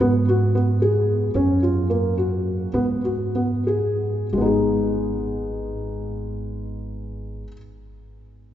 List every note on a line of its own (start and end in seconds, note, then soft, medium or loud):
0.00 1.32 G#2 medium
0.00 0.25 B3 medium
0.28 0.52 F#4 medium
0.55 0.79 B3 medium
0.82 1.30 G#4 medium
1.34 2.71 F#2 medium
1.34 1.59 C#4 medium
1.63 1.87 F4 medium
1.90 2.14 A#3 medium
2.18 2.68 F#4 medium
2.74 4.29 G#2 medium
2.74 3.00 B3 medium
3.04 3.31 F#4 medium
3.35 3.63 B3 medium
3.67 4.26 G#4 medium
4.33 7.42 G#1 medium
4.33 7.43 G#3 medium
4.37 7.47 B3 soft
4.37 7.51 D#4 medium
4.45 7.55 G#4 soft